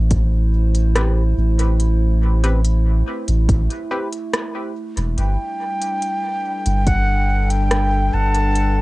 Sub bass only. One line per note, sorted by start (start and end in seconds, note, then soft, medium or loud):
0.00 1.34 A1 medium
1.37 3.03 A1 medium
3.28 3.48 A1 medium
3.49 3.68 A1 medium
4.97 5.15 E1 loud
5.18 5.37 G1 loud
6.66 8.10 G1 loud
8.13 8.82 G1 medium